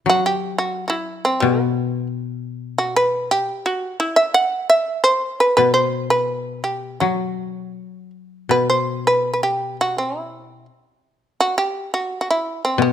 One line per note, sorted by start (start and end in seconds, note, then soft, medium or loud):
0.06 2.12 F#3 soft
0.06 0.25 F#4 medium
0.26 0.58 G4 medium
0.58 0.85 F#4 medium
0.88 1.24 E4 medium
0.88 0.94 F#4 soft
1.25 1.42 C4 medium
1.40 3.48 B2 soft
1.40 2.07 B3 medium
2.78 2.95 F#4 medium
2.96 3.29 B4 medium
3.31 3.64 G4 medium
3.66 3.99 F#4 medium
4.00 4.17 E4 medium
4.16 4.34 E5 medium
4.34 4.68 F#5 medium
4.70 5.03 E5 medium
5.04 5.38 C5 medium
5.40 5.56 B4 medium
5.57 7.78 B2 soft
5.57 5.73 B4 medium
5.74 6.09 C5 medium
6.10 6.62 B4 medium
6.64 6.99 G4 soft
7.00 9.23 F#3 soft
7.00 8.10 F#4 soft
8.49 10.67 B2 soft
8.49 8.69 B4 medium
8.70 9.04 C5 medium
9.07 9.32 B4 medium
9.34 9.41 B4 soft
9.43 9.76 G4 medium
9.81 9.96 F#4 medium
9.98 10.65 E4 soft
11.40 11.57 F#4 medium
11.58 11.91 G4 medium
11.94 12.20 F#4 medium
12.21 12.28 F#4 soft
12.30 12.62 E4 medium
12.65 12.80 C4 medium
12.78 12.93 B2 soft
12.78 12.93 B3 medium